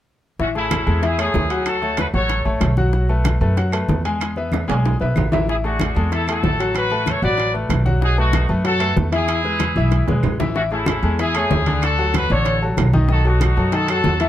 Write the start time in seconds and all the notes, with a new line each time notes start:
0.39 A1 E3 C#4 E4 F#4 E5, high bongo, high conga
0.55 A3 C#4 E4 G#4 A4, high bongo, high conga
0.71 high bongo, high conga, high timbale, low timbale, claves
0.86 E2 G#3 G#4 A4, high bongo, high conga
1.02 E3 E4 G#4 E5, high bongo, high conga, high timbale
1.18 A3 G#4 C#5, high conga, high timbale, claves
1.22 E4
1.34 D2, high bongo, low bongo, high conga, low timbale
1.50 F#3 F#4 F#5, high bongo, high timbale
1.66 F#4 A4, high bongo, high conga, high timbale, claves
1.82 A3 A4 C#5, high bongo, high conga
1.97 F#4 B4, high bongo, high conga, high timbale, low timbale, claves
2.14 A1 F#3 F#4 A4 C#5 F#5, high bongo, high conga
2.29 high bongo, high conga, high timbale
2.45 A1 A3 A4 C#5, high conga
2.61 B1, high bongo, low bongo, high conga, high timbale, low timbale, claves
2.77 F#3 F#4 F#5, high bongo, high conga
2.93 F#3 F#4 F#5, high bongo, high conga
3.09 A3 A4 B4, high bongo, high conga
3.24 high bongo, high conga, high timbale, low timbale, claves
3.41 F#2 A3 A4 B4, high bongo, high conga
3.57 F#3 F#4 F#5, high bongo, high conga, high timbale
3.72 A3 A4 B4, high conga, high timbale, claves
3.89 E2, high bongo, low bongo, high conga, low timbale
4.05 G#3 G#4 G#5, high bongo, high timbale
4.20 high bongo, high conga, high timbale, claves
4.36 B3 B4 E5, high bongo, high conga
4.52 high bongo, high conga, high timbale, claves
4.68 B1 G#3 G#4 G#5, high bongo, high conga, high timbale
4.84 high bongo, high conga, low timbale
5.00 B1 B3 B4 E5, high conga, low timbale
5.16 A1, high bongo, low bongo, high conga, low timbale, claves
5.32 E3 E4 E5, high bongo, high conga, low timbale
5.48 E3 E4 G#4 E5, high bongo, high conga
5.64 A3 D4 F#4 G#4 A4, high bongo, high conga
5.80 high bongo, high conga, high timbale, low timbale, claves
5.95 E2 G#3 G#4 A4, high bongo, high conga
6.11 E3 E4 A4 E5, high bongo, high conga, high timbale
6.27 A3 E4 F#4 A4, high conga, high timbale, claves
6.43 A1, high bongo, low bongo, high conga, low timbale
6.60 F#3 F#4 F#5, high bongo, high timbale
6.75 F#4 B4, high bongo, high conga, high timbale, claves
6.90 A3 A4 B4, high bongo, high conga
7.06 A4 C#5, high bongo, high conga, high timbale, low timbale, claves
7.22 A1 F#3 F#4 B4 D5 F#5, high bongo, high conga
7.38 high bongo, high conga, high timbale
7.54 A3 A4 B4, high conga
7.69 B1, high bongo, low bongo, high conga, high timbale, low timbale, claves
7.85 F#3 F#4 F#5, high bongo, high conga
8.01 F#3 D#4 F#4 G#4 F#5, high bongo, high conga
8.18 A3 D#4 F#4 A4 B4, high bongo, high conga
8.33 high bongo, high conga, high timbale, low timbale, claves
8.49 F#2 A3 A4 B4, high bongo, high conga
8.64 F#3 F#4 A4 F#5, high bongo, high conga, high timbale
8.80 A3 A4 B4, high conga, high timbale, claves
8.96 E2, high bongo, low bongo, high conga, low timbale
9.12 E3 E4 G#4 E5, high bongo, high timbale
9.28 high bongo, high conga, high timbale, claves
9.44 G#3 G#4 B4, high bongo, high conga
9.59 high bongo, high conga, high timbale, low timbale, claves
9.76 B1 E3 E4 E5, high bongo, high conga
9.91 high bongo, high conga, high timbale
10.07 B1 G#3 G#4 B4, high bongo, high conga, high timbale
10.23 A1, low conga, low timbale, claves
10.40 E3 E4 E5, low bongo, low conga, low timbale
10.55 E3 C#4 E4 F#4 E5, high bongo, high conga
10.71 A3 C#4 E4 G#4 A4, high bongo, high conga
10.86 high bongo, high conga, high timbale, low timbale, claves
11.03 E2 G#3 G#4 A4, high bongo, high conga
11.19 E3 E4 G#4 E5, high bongo, high conga, high timbale
11.35 A3 E4 G#4 C#5, high conga, high timbale, claves
11.51 D2, high bongo, low bongo, high conga, low timbale
11.66 D3 D4 D5, high bongo, high conga, high timbale
11.82 F#4 A4, high bongo, high conga, high timbale, claves
11.98 F#3 F#4 A4, high bongo, high conga
12.14 F#4 B4, high bongo, high conga, high timbale, low timbale, claves
12.30 A1 D3 D4 A4 C#5, high bongo, high conga
12.45 high bongo, high conga, high timbale
12.62 F#3 F#4 A4, high conga
12.77 B1, high bongo, low bongo, high conga, high timbale, low timbale, claves
12.93 D#3 D#4 D#5, high bongo, high conga
13.09 D#3 D#4 F#4 A4 D#5, high bongo, high conga
13.24 F#3 D#4 F#4 A4, high bongo, high conga
13.41 high bongo, high conga, high timbale, low timbale, claves
13.57 F#2 F#3 F#4 A4, high bongo, high conga
13.72 D#3 D#4 F#4 A4 D#5, high bongo, high conga, high timbale
13.88 F#3 F#4 A4, high conga, high timbale, claves
14.04 E2, high bongo, low bongo, high conga, low timbale
14.20 E3 E4 E5, high bongo, high timbale